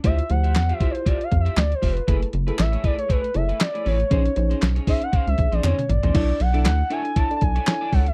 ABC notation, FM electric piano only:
X:1
M:4/4
L:1/16
Q:"Swing 16ths" 1/4=118
K:Dlyd
V:1 name="FM electric piano"
[E=F=G=c] z [=F,EGc]3 z [EFGc]6 z4 | [EGAB]2 z [EGAB]4- [EGAB] z2 [EGAc]4 z2 | [C^DG^B] z [CDGB]3 z [CDGB]6 z4 | [DEAc]2 z [DEAe]2 z [DEAe]2 z [DEAd]2 z [DEAc]3 z |]